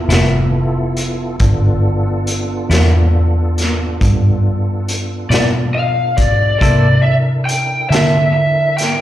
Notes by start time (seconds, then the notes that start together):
Already playing: B3 E4 F4 A4
0.08 F1 G2 F3 B3 E4, closed hi-hat
0.13 snare
0.97 closed hi-hat
1.40 G1 B3 D4 F4 A4, kick, closed hi-hat
2.27 closed hi-hat
2.70 E2 G2 F3 B3 E4, snare, closed hi-hat
3.58 snare, closed hi-hat
4.01 G2, kick, closed hi-hat
4.88 closed hi-hat
5.30 G2 B2 F3 B3 E4 D5, snare, closed hi-hat
5.75 F5
6.17 D5, kick, closed hi-hat
6.59 C3 A#3 D4 E4 A4 A#4 D5, kick, closed hi-hat
7.02 E5
7.46 G5, closed hi-hat
7.90 D3 A#3 E4 A4 E5, closed hi-hat
7.94 C3, snare
8.33 E5
8.77 G5, snare, closed hi-hat